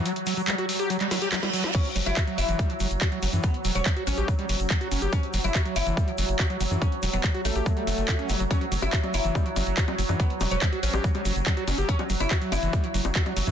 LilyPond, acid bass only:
\new Staff \with { instrumentName = "Acid bass" } { \clef bass \time 4/4 \key fis \phrygian \tempo 4 = 142 fis16 r16 fis16 fis16 g16 fis'16 r16 g'16 fis16 g16 fis16 g'16 fis16 g16 fis16 fis'16 | fis16 r16 fis16 fis16 fis'16 fis16 r16 e16 g16 e16 fis16 r16 fis'16 fis16 fis16 e16 | fis16 r16 fis16 fis16 g16 fis'16 r16 g'16 fis16 g16 fis16 r16 fis16 fis'16 cis'16 g'16 | fis16 r16 fis16 fis16 fis'16 fis16 r16 e16 g16 e16 fis16 r16 fis'16 fis16 fis16 e16 |
fis16 r16 fis16 fis16 g16 fis'16 r16 g'16 fis16 g16 a8 fis'16 cis'16 fis16 fis16 | fis16 fis16 fis16 r16 fis'16 fis16 r16 e16 g16 e16 fis16 r16 fis'16 fis16 fis16 e16 | fis16 r16 fis16 fis16 g16 fis'16 r16 g'16 fis16 g16 fis16 r16 fis16 fis'16 cis'16 g'16 | fis16 fis16 fis16 r16 fis'16 fis16 r16 e16 g16 e16 fis16 r16 fis'16 fis16 fis16 e16 | }